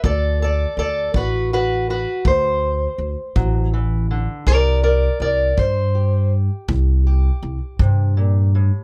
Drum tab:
BD |o--o--o--o--|o--o--o--o--|